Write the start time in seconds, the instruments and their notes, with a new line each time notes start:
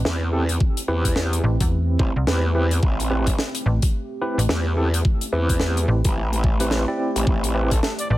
Already playing: analog synth pad A3 C4 G4
0.05 wobble bass E2, snare
0.33 tine electric piano C4 E4 G4 A4
0.49 closed hi-hat
0.60 kick
0.77 closed hi-hat
0.88 wobble bass E2, tine electric piano C4 E4 G4 B4
1.05 kick, closed hi-hat
1.16 snare
1.33 closed hi-hat
1.44 fm bass A1
1.60 fm bass E2, kick, closed hi-hat
1.99 wobble bass A1, tine electric piano C4 E4 G4 C5, kick
2.16 fm bass C2
2.27 wobble bass E2, tine electric piano C4 E4 G4 B4, snare
2.55 tine electric piano C4 E4 G4 B4
2.71 closed hi-hat
2.83 wobble bass A1, kick
3.00 closed hi-hat
3.10 tine electric piano C4 E4 G4 B4
3.27 kick, closed hi-hat
3.39 snare
3.55 closed hi-hat
3.66 fm bass A1
3.82 kick, closed hi-hat
4.21 tine electric piano C4 E4 G4 B4
4.38 fm bass A1, closed hi-hat
4.49 wobble bass E2, snare
4.77 tine electric piano C4 E4 G4 A4
4.94 closed hi-hat
5.05 kick
5.21 closed hi-hat
5.33 wobble bass E2, tine electric piano C4 E4 G4 B4
5.49 kick, closed hi-hat
5.60 snare
5.77 closed hi-hat
5.88 fm bass A1
6.04 wobble bass A1, kick, closed hi-hat
6.33 closed hi-hat
6.44 kick
6.60 tine electric piano C4 E4 G4 B4, closed hi-hat
6.71 snare
6.88 tine electric piano C4 E4 G4 D5
7.16 wobble bass A1, closed hi-hat
7.27 wobble bass A1, analog synth pad D5, kick
7.44 closed hi-hat
7.55 tine electric piano C4 E4 G4 B4
7.71 trumpet A4, kick, closed hi-hat
7.83 trumpet A4, snare
7.99 trumpet D5, closed hi-hat
8.10 fm bass A1